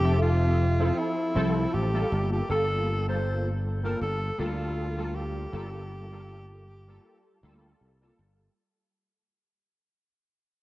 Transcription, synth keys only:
0.03 0.75 F3 medium
0.03 0.75 C4 medium
0.03 0.76 A4 medium
0.03 0.75 E5 medium
0.79 1.31 F3 medium
0.79 1.31 C4 medium
0.79 1.31 E4 medium
0.79 1.32 A4 medium
1.34 1.89 F3 loud
1.34 1.89 C4 medium
1.34 1.89 E4 medium
1.34 1.89 A4 loud
1.93 2.45 G3 medium
1.93 2.45 A#3 medium
1.93 2.45 F4 medium
1.93 2.45 A4 medium
2.48 3.03 G3 medium
2.48 3.03 A#3 medium
2.48 3.03 F4 medium
2.48 3.03 A4 loud
3.07 3.79 G3 medium
3.07 3.79 A#3 medium
3.07 3.79 F4 medium
3.07 3.79 A4 medium
3.83 4.35 G3 medium
3.83 4.35 A#3 medium
3.83 4.35 F4 medium
3.83 4.36 A4 medium
4.38 4.92 G3 medium
4.38 4.93 A#3 medium
4.38 4.93 F4 medium
4.38 4.93 A4 loud
4.97 5.49 G3 medium
4.97 5.49 A#3 medium
4.97 5.49 F4 medium
4.97 5.49 A4 medium
5.52 6.06 G3 medium
5.52 6.07 A#3 medium
5.52 6.07 F4 medium
5.52 6.07 A4 loud
6.11 6.83 G3 medium
6.11 6.83 A#3 medium
6.11 6.83 F4 medium
6.11 6.83 A4 medium
6.87 7.39 G3 medium
6.87 7.39 A#3 medium
6.87 7.39 F4 medium
6.87 7.39 A4 medium
7.43 7.97 G3 loud
7.43 7.97 A#3 medium
7.43 7.97 F4 medium
7.43 7.97 A4 loud
8.01 8.53 G3 medium
8.01 8.53 A#3 medium
8.01 8.53 F4 medium
8.01 8.53 A4 medium

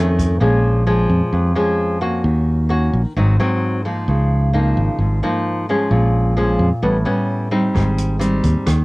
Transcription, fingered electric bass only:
0.00 0.37 F2 medium
0.41 1.06 A#1 medium
1.10 1.20 F2 medium
1.33 1.54 F2 medium
2.24 2.89 D#2 medium
2.94 3.04 A#1 loud
3.17 3.38 G#1 medium
4.08 4.73 C#2 medium
4.77 4.87 G#1 loud
4.98 5.20 G#1 medium
5.91 6.56 A#1 medium
6.59 6.70 F2 medium
6.83 7.04 A1 medium
7.75 8.40 G#1 medium
8.44 8.54 D#2 medium
8.67 8.85 D#2 medium

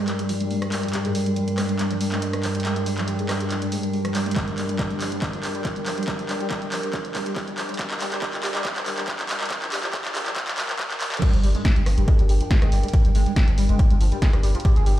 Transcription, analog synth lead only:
0.08 0.10 G3 medium
0.19 0.21 G3 medium
0.29 0.32 F3 medium
0.41 0.44 G3 medium
0.51 0.57 G#3 medium
0.62 0.64 G3 medium
0.72 0.74 G3 medium
0.83 0.85 F3 medium
0.93 0.97 G3 medium
1.05 1.10 G#3 loud
1.15 1.17 G3 medium
1.26 1.28 G3 medium
1.36 1.39 F3 medium
1.48 1.51 G3 medium
1.58 1.64 G#3 loud
1.69 1.71 G3 medium
1.79 1.82 G3 medium
1.91 1.93 F3 medium
2.01 2.05 G3 medium
2.12 2.17 G#3 loud
2.22 2.24 G3 medium
2.33 2.35 G3 medium
2.43 2.46 F3 medium
2.55 2.58 G3 medium
2.65 2.71 G#3 loud
2.76 2.78 G3 medium
2.86 2.89 G3 medium
2.98 3.00 F3 medium
3.08 3.12 G3 medium
3.19 3.24 G#3 loud
3.29 3.32 G3 medium
3.40 3.43 G3 medium
3.51 3.53 F3 medium
3.62 3.65 G3 medium
3.72 3.78 G#3 loud
3.83 3.85 G3 medium
3.93 3.96 G3 medium
4.05 4.07 F3 medium
4.15 4.19 G3 medium
4.26 4.31 G#3 loud
4.36 4.39 G3 medium
4.48 4.50 F3 medium
4.58 4.62 G3 medium
4.69 4.74 G3 loud
4.79 4.82 G3 medium
4.90 4.93 G3 medium
5.01 5.03 F3 medium
5.12 5.15 G3 medium
5.22 5.24 G3 medium
5.33 5.35 F3 medium
5.43 5.47 G3 medium
5.55 5.60 G3 medium
5.65 5.67 G3 medium
5.76 5.78 G3 medium
5.86 5.89 F3 medium
5.98 6.01 G3 medium
6.08 6.10 G3 medium
6.19 6.21 F3 medium
6.29 6.33 G3 medium
6.40 6.46 G3 loud
6.50 6.53 G3 medium
6.62 6.64 G3 medium
6.72 6.74 F3 medium
6.83 6.87 G3 medium
6.93 6.96 G3 medium
7.05 7.07 F3 medium
7.15 7.19 G3 medium
7.26 7.31 G3 loud
7.36 7.39 G3 medium
7.48 7.50 G3 medium
7.58 7.60 F3 medium
7.69 7.73 G3 medium
7.79 7.82 G3 medium
7.90 7.93 F3 medium
8.01 8.05 G3 medium
8.12 8.17 G3 loud
8.22 8.24 G3 medium
8.33 8.35 F3 medium
8.43 8.47 G3 medium
8.55 8.60 G3 loud
8.65 8.67 G3 medium
8.76 8.78 F3 medium
8.86 8.90 G3 medium
8.98 9.03 G3 loud
9.08 9.10 G3 medium
9.19 9.21 F3 medium
9.29 9.33 G3 medium
9.40 9.46 G3 loud
9.51 9.53 G3 medium
9.62 9.64 F3 medium
9.72 9.74 G3 medium
9.83 9.85 F3 medium
9.93 9.96 G3 medium
10.05 10.07 F3 medium
10.15 10.17 G3 medium
10.26 10.28 F3 medium
10.36 10.39 G3 medium
10.48 10.50 F3 medium
10.58 10.60 G3 medium
10.69 10.71 F3 medium
10.79 10.82 G3 medium
10.90 10.93 F3 medium
11.01 11.03 G3 medium
11.12 11.14 F3 medium
11.22 11.24 G3 medium
11.33 11.35 F3 medium
11.43 11.47 G3 medium
11.55 11.60 G#3 loud
11.65 11.67 G3 medium
11.76 11.78 G3 medium
11.86 11.89 F3 medium
11.98 12.01 G3 medium
12.08 12.14 G#3 loud
12.19 12.21 G3 medium
12.29 12.32 G3 medium
12.40 12.43 F3 medium
12.51 12.55 G3 medium
12.62 12.67 G#3 loud
12.72 12.74 G3 medium
12.83 12.85 G3 medium
12.93 12.96 F3 medium
13.05 13.08 G3 medium
13.15 13.21 G#3 loud
13.26 13.28 G3 medium
13.36 13.39 G3 medium
13.48 13.50 F3 medium
13.58 13.62 G3 medium
13.69 13.74 G#3 loud
13.79 13.82 G3 medium
13.91 13.93 G3 medium
14.01 14.03 F3 medium
14.12 14.15 G3 medium
14.22 14.28 G#3 loud
14.33 14.35 G3 medium
14.43 14.46 G3 medium
14.55 14.57 F3 medium
14.65 14.69 G3 medium
14.76 14.82 G#3 loud
14.86 14.89 G3 medium

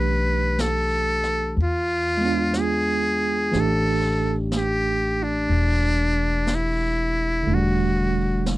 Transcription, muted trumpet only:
0.00 0.62 B4 medium
0.61 1.57 A4 medium
1.63 2.62 F4 medium
2.60 3.62 G#4 medium
3.60 4.37 A4 medium
4.57 5.25 G4 medium
5.23 6.56 D4 medium
6.55 7.56 E4 medium
7.54 8.49 F#4 medium

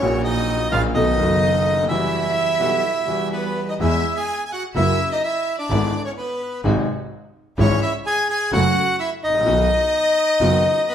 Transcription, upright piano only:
0.00 0.69 A#1 medium
0.00 0.69 A#2 medium
0.00 0.68 C#3 medium
0.00 0.68 F#3 medium
0.00 0.69 A#3 medium
0.04 0.70 F#4 medium
0.72 0.91 A#1 medium
0.72 0.91 A#2 medium
0.72 0.91 C#3 medium
0.72 0.91 F#3 medium
0.72 0.91 A#3 medium
0.72 0.92 F#4 medium
0.95 1.15 B1 medium
0.95 1.15 B2 medium
0.95 1.15 D#3 medium
0.95 1.15 A3 medium
0.95 1.15 B3 medium
0.95 1.15 F#4 medium
1.17 1.86 F#1 medium
1.17 1.86 F#2 medium
1.17 1.85 D#3 medium
1.17 1.85 A3 medium
1.17 1.86 B3 medium
1.17 1.87 F#4 medium
1.72 1.77 C#2 soft
1.77 1.83 D2 medium
1.83 1.89 D#2 medium
1.87 2.56 E2 medium
1.87 2.56 E3 medium
1.87 2.56 G3 medium
1.87 2.57 B3 medium
1.87 2.57 F#4 medium
2.59 2.80 B1 medium
2.59 2.80 B2 medium
2.59 2.80 E3 medium
2.59 2.80 G3 medium
2.59 2.80 B3 medium
2.59 2.80 F#4 medium
3.06 3.77 E2 medium
3.06 3.07 E3 medium
3.06 3.77 E3 medium
3.06 3.76 G3 soft
3.06 3.77 B3 soft
3.10 3.78 F#4 medium
3.80 4.00 E2 medium
3.80 4.00 E3 medium
3.80 4.00 G#3 medium
3.80 4.00 B3 medium
3.80 4.00 G#4 medium
4.76 4.96 F#2 medium
4.76 4.96 C#3 medium
4.76 4.96 F#3 medium
4.76 4.96 A#3 medium
4.76 4.96 E4 medium
5.70 5.90 G#1 medium
5.70 5.90 G#2 medium
5.70 5.90 D3 medium
5.70 5.90 G#3 medium
5.70 5.90 B3 medium
5.70 5.90 E4 medium
6.64 6.84 G#1 medium
6.64 6.84 G#2 medium
6.64 6.84 C3 medium
6.64 6.84 F#3 medium
6.64 6.84 G#3 medium
6.64 6.84 D#4 medium
7.58 7.78 G#1 medium
7.58 7.78 G#2 medium
7.58 7.78 C#3 medium
7.58 7.78 E3 medium
7.58 7.78 G#3 medium
7.58 7.78 E4 medium
8.52 8.72 F#2 medium
8.52 8.72 C#3 medium
8.52 8.72 F#3 medium
8.52 8.72 A3 medium
8.52 8.72 F#4 medium
9.29 9.35 G#1 soft
9.35 9.41 A1 medium
9.41 9.47 A#1 medium
9.46 9.66 B1 medium
9.46 9.66 B2 medium
9.46 9.66 D#3 medium
9.46 9.66 F#3 medium
9.46 9.66 B3 medium
9.46 9.66 F#4 medium
10.40 10.61 F#1 medium
10.40 10.61 F#2 medium
10.40 10.61 D#3 medium
10.40 10.61 F#3 medium
10.40 10.61 B3 medium
10.40 10.61 F#4 medium

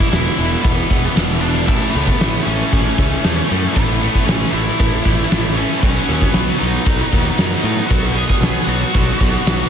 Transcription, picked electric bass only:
0.12 0.28 E1 medium
0.38 0.54 E1 medium
0.65 0.80 E1 medium
0.90 1.06 E1 medium
1.16 1.68 E1 loud
1.68 1.83 A1 medium
1.95 2.10 C#2 loud
2.20 2.36 A1 medium
2.46 2.62 A1 medium
2.73 2.88 A1 medium
2.98 3.14 C#2 medium
3.25 3.40 E2 medium
3.51 3.66 F#2 medium
3.76 4.07 A1 medium
4.27 4.43 A1 medium
4.52 4.68 A1 medium
4.80 4.95 A1 medium
5.06 5.21 A1 medium
5.32 5.63 A1 medium
5.83 5.98 B1 medium
6.09 6.24 D#2 medium
6.35 6.50 B1 medium
6.61 6.77 B1 medium
6.86 7.02 B1 medium
7.13 7.28 D#2 medium
7.39 7.54 F#2 medium
7.63 7.79 A2 medium
7.91 8.22 B1 medium
8.41 8.57 B1 medium
8.67 8.83 B1 medium
8.95 9.10 B1 medium
9.21 9.36 B1 medium
9.46 9.62 B1 medium

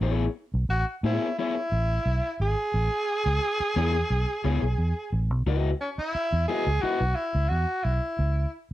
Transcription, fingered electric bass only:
0.01 0.27 A1 loud
0.54 0.66 B1 loud
0.69 0.83 A1 loud
1.03 1.17 A2 medium
1.72 1.97 A1 medium
2.06 2.19 B1 medium
2.40 2.53 G#1 medium
2.74 2.88 A1 loud
3.26 3.38 C#2 medium
3.60 muted fingered electric bass stroke soft
3.76 4.02 E2 medium
4.10 4.24 B1 loud
4.45 4.58 C#2 medium
4.62 4.74 B1 medium
4.78 4.92 E2 medium
5.12 5.30 A1 medium
5.30 5.43 B1 loud
5.46 5.72 C#2 loud
5.98 muted fingered electric bass stroke soft
6.15 muted fingered electric bass stroke soft
6.33 6.45 E2 medium
6.67 6.79 C#2 medium
6.83 muted fingered electric bass stroke soft
7.01 7.13 B1 medium
7.35 7.47 C#2 loud
7.51 7.64 E2 medium
7.85 7.99 B1 medium
8.19 8.44 C#2 loud

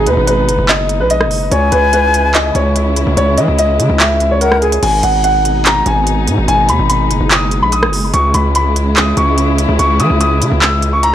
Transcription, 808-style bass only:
0.07 0.17 D#2 loud
0.17 0.50 G#1 loud
0.48 0.58 F#1 loud
0.58 1.01 F#1 loud
1.00 1.27 A#1 loud
1.26 1.50 F#1 loud
1.52 1.71 C#2 loud
1.72 2.52 C#2 loud
2.55 3.05 C#2 loud
3.07 3.17 C#2 loud
3.17 3.39 C#2 loud
3.38 3.48 E3 loud
3.48 3.81 C#2 loud
3.79 3.89 C#3 loud
3.90 4.79 C#2 loud
4.83 5.03 G#1 loud
5.04 5.83 G#1 loud
5.86 6.29 G#1 loud
6.27 6.37 G#2 loud
6.38 6.48 G#1 loud
6.48 6.70 G#1 loud
6.69 6.79 D#2 loud
6.79 7.12 G#1 loud
7.10 7.20 F#1 loud
7.21 7.64 F#1 loud
7.62 7.89 A#1 loud
7.88 8.12 F#1 loud
8.14 8.34 C#2 loud
8.34 9.14 C#2 loud
9.17 9.67 C#2 loud
9.69 9.79 C#2 loud
9.79 10.01 C#2 loud
10.00 10.09 E3 loud
10.10 10.43 C#2 loud
10.41 10.51 C#3 loud
10.52 11.15 C#2 loud

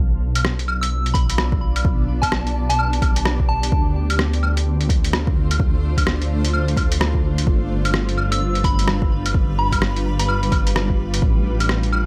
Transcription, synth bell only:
0.81 1.06 E6 medium
1.14 1.39 B5 medium
2.22 2.47 A5 medium
2.69 2.94 A5 medium
3.49 3.78 A5 medium
8.32 8.56 E6 medium
8.65 8.89 B5 medium
9.59 9.83 B5 medium
10.19 10.52 B5 medium

